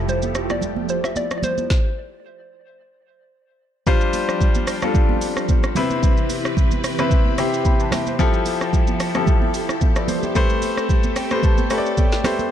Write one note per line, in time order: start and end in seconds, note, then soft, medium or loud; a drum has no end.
0.00 1.66 F1 medium
0.00 1.66 F3 medium
0.00 1.68 F3 medium
0.00 1.68 A3 medium
0.00 1.66 E4 medium
0.00 1.67 G4 medium
0.00 1.68 G4 medium
0.00 1.67 A4 medium
0.08 0.52 C5 medium
0.08 low conga medium
0.08 shaker medium
0.22 high conga medium
0.22 shaker medium
0.35 cross-stick medium
0.35 shaker medium
0.50 0.87 D5 medium
0.50 cross-stick medium
0.50 high conga medium
0.50 shaker soft
0.61 low conga medium
0.61 shaker medium
0.77 high conga medium
0.89 1.04 C5 medium
0.89 shaker medium
1.04 1.17 E5 loud
1.04 cross-stick medium
1.04 shaker medium
1.16 1.36 D5 loud
1.16 high conga medium
1.16 shaker medium
1.31 cross-stick medium
1.31 shaker medium
1.38 1.44 D5 medium
1.43 3.02 C5 medium
1.43 high conga medium
1.43 low conga medium
1.43 shaker medium
1.58 high conga medium
1.58 shaker soft
1.70 kick loud
1.70 snare medium
3.87 5.74 F3 medium
3.87 4.63 G3 loud
3.87 8.15 C4 medium
3.87 5.74 D4 medium
3.87 4.63 D4 loud
3.87 4.63 F4 loud
3.87 5.74 G4 medium
3.87 4.63 C5 loud
3.87 kick loud
3.87 low conga medium
3.87 shaker medium
4.01 shaker soft
4.13 open hi-hat medium
4.13 high conga soft
4.13 shaker loud
4.29 cross-stick medium
4.29 shaker medium
4.41 kick loud
4.41 low conga medium
4.41 shaker medium
4.55 high conga medium
4.55 shaker medium
4.67 cross-stick medium
4.67 open hi-hat medium
4.67 shaker medium
4.82 5.68 G3 medium
4.82 5.69 D4 medium
4.82 5.69 F4 medium
4.82 5.69 A4 loud
4.82 cross-stick medium
4.82 high conga medium
4.82 shaker medium
4.94 kick loud
4.94 low conga medium
4.94 shaker medium
5.09 high conga medium
5.21 open hi-hat medium
5.21 shaker medium
5.37 cross-stick medium
5.37 shaker medium
5.49 kick medium
5.49 high conga medium
5.49 shaker medium
5.63 cross-stick medium
5.63 shaker soft
5.75 6.63 C3 loud
5.75 8.17 E3 medium
5.75 6.63 C4 medium
5.75 6.63 E4 medium
5.75 12.51 G4 medium
5.75 8.17 B4 medium
5.75 6.63 B4 loud
5.75 open hi-hat medium
5.75 high conga medium
5.75 low conga medium
5.75 shaker medium
5.90 high conga medium
5.90 shaker medium
6.03 kick loud
6.03 low conga medium
6.03 shaker medium
6.17 shaker soft
6.30 open hi-hat medium
6.30 high conga soft
6.30 shaker loud
6.45 cross-stick medium
6.45 shaker soft
6.57 kick loud
6.57 low conga medium
6.57 shaker medium
6.71 high conga medium
6.71 shaker medium
6.84 cross-stick medium
6.84 open hi-hat medium
6.84 shaker medium
6.99 7.31 C3 medium
6.99 7.31 C4 medium
6.99 7.31 E4 medium
6.99 7.31 B4 loud
6.99 cross-stick medium
6.99 high conga medium
6.99 shaker medium
7.10 kick loud
7.10 low conga medium
7.10 shaker medium
7.25 high conga medium
7.38 7.82 C3 medium
7.38 7.83 C4 medium
7.38 7.83 E4 medium
7.38 7.83 G4 loud
7.38 cross-stick medium
7.38 open hi-hat medium
7.38 shaker medium
7.54 shaker medium
7.65 7.80 G5 medium
7.65 7.79 B5 medium
7.65 kick medium
7.65 high conga medium
7.65 shaker medium
7.80 7.92 A5 medium
7.80 shaker medium
7.92 8.06 E5 medium
7.92 8.07 G5 medium
7.92 cross-stick loud
7.92 snare medium
7.92 open hi-hat medium
7.92 high conga medium
7.92 low conga medium
7.92 shaker medium
8.07 8.33 C5 medium
8.07 8.33 E5 medium
8.07 high conga medium
8.07 shaker medium
8.19 10.33 F3 medium
8.19 8.95 F3 loud
8.19 10.33 E4 medium
8.19 8.96 E4 loud
8.19 8.96 G4 loud
8.19 10.33 A4 medium
8.19 8.96 A4 loud
8.19 kick loud
8.19 low conga medium
8.19 shaker medium
8.34 shaker soft
8.46 open hi-hat medium
8.46 high conga soft
8.46 shaker medium
8.61 cross-stick medium
8.61 shaker medium
8.73 kick medium
8.73 low conga medium
8.73 shaker medium
8.87 high conga medium
8.87 shaker medium
9.00 cross-stick medium
9.00 open hi-hat medium
9.00 shaker medium
9.15 10.01 F3 medium
9.15 9.54 E4 medium
9.15 9.55 G4 medium
9.15 9.55 A4 loud
9.15 cross-stick medium
9.15 high conga medium
9.15 shaker medium
9.27 kick loud
9.27 low conga medium
9.27 shaker medium
9.42 high conga medium
9.54 open hi-hat medium
9.54 shaker loud
9.69 cross-stick medium
9.69 shaker medium
9.81 kick medium
9.81 high conga medium
9.81 shaker medium
9.96 10.08 B4 medium
9.96 10.08 D5 medium
9.96 cross-stick medium
9.96 shaker medium
10.08 10.23 A4 medium
10.08 10.23 C5 medium
10.08 open hi-hat medium
10.08 high conga medium
10.08 low conga medium
10.08 shaker medium
10.23 10.49 E4 medium
10.23 10.34 G4 medium
10.23 high conga medium
10.23 shaker medium
10.35 11.12 A3 loud
10.35 12.49 A3 medium
10.35 12.49 C4 medium
10.35 11.12 G4 loud
10.35 12.49 A4 medium
10.35 11.12 B4 loud
10.35 11.12 C5 loud
10.35 kick loud
10.35 low conga medium
10.35 shaker medium
10.50 shaker soft
10.62 open hi-hat medium
10.62 high conga soft
10.62 shaker medium
10.77 cross-stick medium
10.77 shaker medium
10.89 kick medium
10.89 low conga medium
10.89 shaker medium
11.03 high conga medium
11.03 shaker medium
11.16 11.42 G5 medium
11.16 cross-stick medium
11.16 open hi-hat medium
11.16 shaker medium
11.31 11.63 A3 medium
11.31 11.63 G4 medium
11.31 11.63 B4 medium
11.31 11.64 C5 loud
11.31 cross-stick medium
11.31 high conga medium
11.31 shaker medium
11.43 11.69 A5 medium
11.43 kick loud
11.43 low conga medium
11.43 shaker medium
11.58 high conga medium
11.58 shaker soft
11.70 12.15 A3 medium
11.70 12.15 G4 medium
11.70 12.15 B4 medium
11.70 11.78 C#5 medium
11.70 11.96 A5 medium
11.70 cross-stick medium
11.70 open hi-hat medium
11.70 shaker medium
11.78 12.19 D5 loud
11.86 shaker medium
11.97 12.23 G5 medium
11.97 kick medium
11.97 high conga medium
11.97 shaker medium
12.12 snare medium
12.12 shaker medium
12.24 12.47 A3 medium
12.24 12.47 G4 medium
12.24 12.47 B4 medium
12.24 12.47 C5 medium
12.24 12.50 E5 medium
12.24 cross-stick loud
12.24 snare medium
12.24 open hi-hat medium
12.24 high conga medium
12.24 low conga medium
12.24 shaker medium
12.39 high conga medium
12.39 shaker medium